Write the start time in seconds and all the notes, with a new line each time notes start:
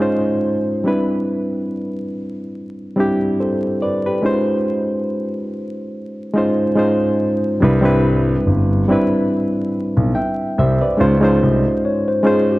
Already playing: C5
0.00 G#3 C#4 D#4 F4 C5
0.84 G3 C4 D4 E4 B4
2.96 G3 C4 D4 E4
3.00 G4
3.40 A4 C5
3.82 B4 D5
4.06 G4 B4
4.22 G#3 C#4 D#4 F4 C5
6.34 G#3 C#4 D#4 F4 C5
6.75 G#3 C#4 D#4 F4 C5
7.60 C2 G3 C4 D4 E4
7.64 B4
7.81 G3 C4 D4 E4 B4
8.47 G1
8.88 G3 C4 D4 E4 B4
9.97 B1
10.15 E5 G5
10.58 C2 C5 E5
10.81 B4 D5
10.97 C#2 G#3 C#4 D#4 F4 C5
11.21 G#3 C#4 D#4 F4 C5
11.43 C2
11.85 C#5
12.08 C5
12.23 G#3 C#4 D#4 F4 G#4 C5
12.51 G4